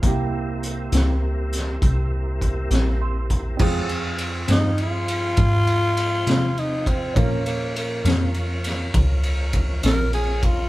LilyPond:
<<
  \new Staff \with { instrumentName = "Grand piano" } { \time 12/8 \key f \minor \tempo 4. = 67 << { r1 r4 c'''4 | r1. | r1. | } \\ { <bes e' g'>1. | <c' f' aes'>1. | <des' f' bes'>1. | } >> }
  \new Staff \with { instrumentName = "Tenor saxophone" } { \time 12/8 \key f \minor r1. | r4. ees'8 f'2. ees'8 c'8 | bes8 bes8 bes8 r2. bes'8 aes'8 f'8 | }
  \new Staff \with { instrumentName = "Tonewheel organ" } { \time 12/8 \key f \minor <g bes c' e'>1. | <ges a des' ges'>8 <f c' f' aes'>1~ <f c' f' aes'>4. | <f bes des' f'>1. | }
  \new Staff \with { instrumentName = "Clean electric guitar" } { \clef bass \time 12/8 \key f \minor <c g bes e'>8 r4 <c g bes e'>8 r2 r8 <c g bes e'>8 r4 | <f, f aes c'>8 r4 <f, f aes c'>8 r2 r8 <f, f aes c'>8 r4 | <bes, f bes des'>8 r4 <bes, f bes des'>8 r2 r8 <bes, f bes des'>8 r4 | }
  \new Staff \with { instrumentName = "Analog synth bass" } { \clef bass \time 12/8 \key f \minor c,4. des,4. c,4. bes,,4. | f,4. g,4. aes,4. c4. | bes,4. f,4. des,4. bes,,4. | }
  \new DrumStaff \with { instrumentName = "Drums" } \drummode { \time 12/8 <hh bd>4 hh8 <hh sn>4 <hh sn>8 <hh bd>4 <hh bd>8 <hh sn>4 <hh bd>8 | <cymc bd>8 cymr8 cymr8 <cymr sn>8 cymr8 cymr8 <bd cymr>8 cymr8 cymr8 <cymr sn>8 cymr8 <bd cymr>8 | <bd cymr>8 cymr8 cymr8 <cymr sn>8 cymr8 <cymr sn>8 <bd cymr>8 cymr8 <bd cymr>8 <cymr sn>8 cymr8 <bd cymr>8 | }
>>